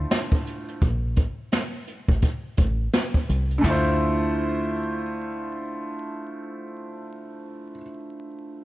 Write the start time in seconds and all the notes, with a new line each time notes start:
Already playing: D3 A3 E4 F4 C5
0.11 snare, closed hi-hat
0.32 kick
0.47 closed hi-hat
0.68 closed hi-hat
0.81 A#1, kick, closed hi-hat
1.16 kick, closed hi-hat
1.52 snare, closed hi-hat
1.87 closed hi-hat
2.08 A1, kick
2.22 kick, closed hi-hat
2.57 A1, kick, closed hi-hat
2.93 snare, closed hi-hat
3.14 kick
3.29 C2, closed hi-hat
3.51 closed hi-hat
3.58 D3 A3
3.64 D2 E4 F4, kick, floor tom, splash
3.70 C5